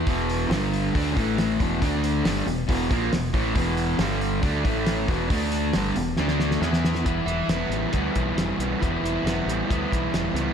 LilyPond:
<<
  \new Staff \with { instrumentName = "Distorted electric guitar" } { \clef bass \time 4/4 \key e \minor \tempo 4 = 137 <e, b, e>4 <g, d g>4 <d a d'>8 <a, e a>4 <e, b, e>8 | <d a d'>4 <g, d g>8 <e, b,>8 <e, b, e>8 <ais, f ais>8 <e, b,>8 <a, e a>8 | <e, b, e>4 <g, d g>4 <d a d'>8 <a, e a>4 <e, b, e>8 | <d a d'>4 <g, d g>8 <e, b,>8 <d a d'>4 <e b e'>4 |
<e g b e'>2 <e g b e'>2 | <e g b e'>2 <e g b e'>2 | }
  \new Staff \with { instrumentName = "Overdriven electric guitar" } { \clef bass \time 4/4 \key e \minor <e, b, e>4 <g, d g>4 <d a d'>8 <a, e a>4 <e, b, e>8 | <d a d'>4 <g, d g>8 <e, b,>8 <e, b, e>8 <ais, f ais>8 <e, b,>8 <a, e a>8 | <e, b, e>4 <g, d g>4 <d a d'>8 <a, e a>4 <e, b, e>8 | <d a d'>4 <g, d g>8 <e, b,>8 <d a d'>4 <e b e'>4 |
e8 e'8 b8 g8 b8 e8 g8 b8 | e8 e'8 b8 g8 b8 e8 g8 b8 | }
  \new Staff \with { instrumentName = "Fingered electric bass" } { \clef bass \time 4/4 \key e \minor e,,4 g,,4 d,8 a,,4 e,,8 | d,4 g,,8 e,,8 e,,8 ais,,8 e,,8 a,,8 | e,,4 g,,4 d,8 a,,4 e,,8 | d,4 g,,8 e,,8 d,4 e,4 |
e,,8 e,,8 e,,8 a,,8 d,8 b,,8 e,,8 b,,8 | e,,8 e,,8 e,,8 a,,8 d,8 b,,8 e,,8 cis,8 | }
  \new DrumStaff \with { instrumentName = "Drums" } \drummode { \time 4/4 <hho bd>8 hho8 <hho sn>8 hho8 <hho bd>8 <hho bd>8 <hho sn>8 <hho bd>8 | <hho bd>8 hho8 <hho sn>8 hho8 <hho bd>8 <hho bd>8 <hho sn>8 <hho bd>8 | <hho bd>8 hho8 <hho sn>8 hho8 <hho bd>8 <hho bd>8 <hho sn>8 <hho bd>8 | <hho bd>8 hho8 <hho sn>8 hho8 sn16 sn16 sn16 sn16 sn16 sn16 sn16 sn16 |
<hh bd>8 hh8 <hh sn>8 hh8 <hh bd>8 <hh bd>8 <hh sn>8 hh8 | <hh bd>8 hh8 <hh sn>8 hh8 <hh bd>8 <hh bd>8 <hh sn>8 hh8 | }
>>